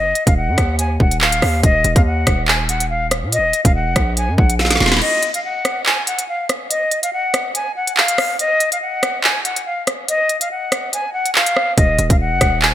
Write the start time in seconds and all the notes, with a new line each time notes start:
Already playing: F#1 D#5
0.15 closed hi-hat
0.27 D#1 F5, kick, closed hi-hat
0.37 F#5
0.48 F#2
0.58 D#2, kick, cross-stick, closed hi-hat
0.79 G#5, closed hi-hat
1.00 D#1 F#5, kick
1.11 closed hi-hat
1.21 D1 F5, clap
1.32 D#1, closed hi-hat
1.42 D#2, cross-stick, open hi-hat
1.63 D#1 D#5, kick, closed hi-hat
1.84 D#1, closed hi-hat
1.96 D#2 F5, kick, closed hi-hat
2.06 F#5
2.27 D#1, kick, cross-stick, closed hi-hat
2.47 G#5, clap
2.69 F#5, closed hi-hat
2.80 closed hi-hat
2.90 F5
3.11 cross-stick, closed hi-hat
3.23 A#2
3.32 D#5, closed hi-hat
3.38 D#1
3.53 closed hi-hat
3.65 D#1 F5, kick, closed hi-hat
3.75 F#5
3.86 F1
3.96 A#1, kick, cross-stick, closed hi-hat
4.17 G#5, closed hi-hat
4.28 F#2
4.37 A#1 F#5, kick
4.50 closed hi-hat
4.59 F5, snare
4.65 snare
4.71 snare, closed hi-hat
4.76 snare
4.80 D#1, snare
4.86 snare
4.92 snare
4.97 snare
5.01 D#5, crash
5.23 closed hi-hat
5.34 F5, closed hi-hat
5.44 F#5
5.65 cross-stick, closed hi-hat
5.86 G#5, clap
6.07 F#5, closed hi-hat
6.19 closed hi-hat
6.28 F5
6.49 cross-stick, closed hi-hat
6.70 D#5, closed hi-hat
6.91 closed hi-hat
7.03 F5, closed hi-hat
7.13 F#5
7.34 cross-stick, closed hi-hat
7.55 G#5, closed hi-hat
7.76 F#5
7.87 closed hi-hat
7.97 F5, clap
8.08 closed hi-hat
8.18 cross-stick, open hi-hat
8.39 D#5, closed hi-hat
8.60 closed hi-hat
8.72 F5, closed hi-hat
8.82 F#5
9.03 cross-stick, closed hi-hat
9.23 G#5, clap
9.45 F#5, closed hi-hat
9.56 closed hi-hat
9.66 F5
9.87 cross-stick, closed hi-hat
10.08 D#5, closed hi-hat
10.29 closed hi-hat
10.41 F5, closed hi-hat
10.51 F#5
10.72 cross-stick, closed hi-hat
10.93 G#5, closed hi-hat
11.13 F#5
11.26 closed hi-hat
11.35 F5, clap
11.46 closed hi-hat
11.57 cross-stick
11.77 D#1 D#5, kick, closed hi-hat
11.99 D#1, closed hi-hat
12.10 D#1 F5, kick, closed hi-hat
12.20 F#5
12.31 F#1
12.41 D#1, kick, cross-stick, closed hi-hat
12.62 G#5, clap